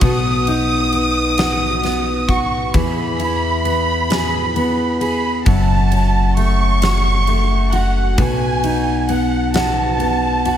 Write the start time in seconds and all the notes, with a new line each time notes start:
Already playing: A3 C#4
0.01 B1 B2 F#4 D#6, kick, ride
0.47 D#4, ride
0.93 B3, ride
1.38 F#4, snare, ride
1.83 B3, snare, ride
2.28 F#4 C#6, kick, ride
2.73 E2 E3 G#4 B5, kick, ride
3.20 E4, ride
3.65 B3, ride
4.10 G#4, snare, ride
4.56 B3, ride
5.00 G#4 B5, ride
5.46 F#1 F#2 F#4 A5, kick, ride
5.91 C#4, ride
6.37 A3 C#6, ride
6.82 F#4, snare, ride
7.27 A3, ride
7.73 F#4 F#5, ride
8.18 B1 B2 F#4 G#5, kick, ride
8.64 D#4, ride
9.09 B3 F#5, ride
9.54 F#4 A5, snare, ride
10.00 B3, ride
10.45 F#4, ride